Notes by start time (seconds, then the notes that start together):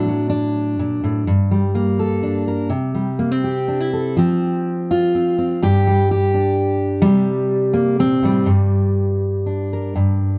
Already playing: A2 D4
0.08 F#3
0.29 D4
0.79 A#2
1.04 A2
1.27 G2
1.51 G3
1.75 A#3
1.99 A4
2.23 D4
2.48 A#4
2.69 C3
2.95 G3
3.19 A#3
3.31 C4
3.44 G4
3.68 D4
3.80 E4
3.93 A4
4.17 F3 C4
4.91 F4
5.15 C4
5.38 C4
5.62 G2 G4
5.87 G3
6.11 G4
6.34 D4
7.02 C3 G3
7.73 A#3
7.99 A#2 C4
8.23 A2 G3
8.46 G2
9.46 D4
9.73 A#4
9.96 G2